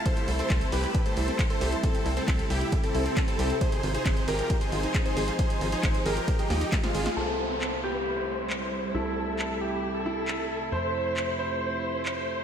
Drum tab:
RD |x---x---x---x---|x---x---x---x---|x---x---x---x---|x---x---x---x---|
HH |xxoxxxoxxxoxxxox|xxoxxxoxxxoxxxox|xxoxxxoxxxoxxxox|xxoxxxoxxxoxxxox|
CP |----x-------x---|----x-------x---|----x-------x---|----x-------x---|
SD |----------------|----------------|----------------|----------o-oo-o|
BD |o---o---o---o---|o---o---o---o---|o---o---o---o---|o---o---o---o---|

RD |----------------|----------------|----------------|
HH |----------------|----------------|----------------|
CP |----x-------x---|----x-------x---|----x-------x---|
SD |----------------|----------------|----------------|
BD |----------------|----------------|----------------|